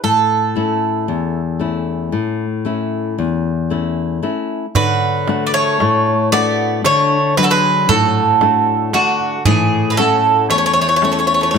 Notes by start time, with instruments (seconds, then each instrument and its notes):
0.04 nylon-string guitar A2, bouzouki A4
0.56 nylon-string guitar A3 C#4 E4
1.08 nylon-string guitar E2
1.60 nylon-string guitar A3 C#4 E4
2.12 nylon-string guitar A2
2.65 nylon-string guitar A3 C#4 E4
3.18 nylon-string guitar E2
3.70 nylon-string guitar A3 C#4 E4
4.23 nylon-string guitar A3 C#4 E4
4.75 nylon-string guitar D3, bouzouki F#3 B4, darbuka dum
5.28 nylon-string guitar A3 D4 F#4, darbuka tek
5.47 bouzouki B3 D5
5.54 bouzouki A3 C#5
5.80 nylon-string guitar A2, darbuka tek
6.07 darbuka tek
6.32 nylon-string guitar A3 D4 F#4, bouzouki B3 D5, darbuka tek
6.84 nylon-string guitar D3, bouzouki A3 C#5, darbuka tek
7.37 nylon-string guitar F#3 D4 F#4, bouzouki G#3 B4, darbuka tek
7.43 bouzouki F#3 A4
7.51 bouzouki G#3 B4
7.89 nylon-string guitar A2, bouzouki F#3 A4, darbuka dum
8.41 nylon-string guitar A3 D4 F#4, darbuka tek
8.93 bouzouki D3 F#4, nylon-string guitar A3 D4 F#4, darbuka tek
9.20 darbuka tek
9.45 nylon-string guitar A2, bouzouki E3 G#4, darbuka dum
9.90 bouzouki G#3 B4
9.97 bouzouki F#3 A4, nylon-string guitar A3 C#4 E4, darbuka tek
10.50 nylon-string guitar E2, bouzouki A3 C#5, darbuka tek
10.58 bouzouki A3 C#5
10.66 bouzouki A3 C#5
10.73 bouzouki A3 C#5, darbuka tek
10.81 bouzouki A3 C#5
10.89 bouzouki A3 C#5
10.96 bouzouki A3 C#5
11.02 nylon-string guitar A3 C#4 E4, bouzouki A3 C#5, darbuka tek
11.12 bouzouki A3 C#5
11.19 bouzouki A3 C#5
11.27 bouzouki A3 C#5
11.34 bouzouki A3 C#5
11.41 bouzouki A3 C#5
11.51 nylon-string guitar A2, bouzouki A3 C#5, darbuka tek